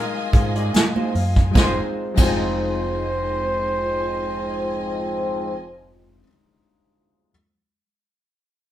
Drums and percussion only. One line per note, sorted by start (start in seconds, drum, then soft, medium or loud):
0.33 kick medium
0.33 closed hi-hat medium
0.33 muted conga soft
0.55 closed hi-hat medium
0.74 snare loud
0.74 closed hi-hat medium
0.74 tambourine medium
0.74 high conga medium
0.96 high conga medium
1.15 open hi-hat medium
1.36 kick medium
1.36 closed hi-hat soft
1.55 kick loud
1.55 snare medium
1.55 tambourine medium
1.55 muted conga medium
2.17 kick loud
2.17 crash medium
2.17 tambourine medium
2.17 muted conga medium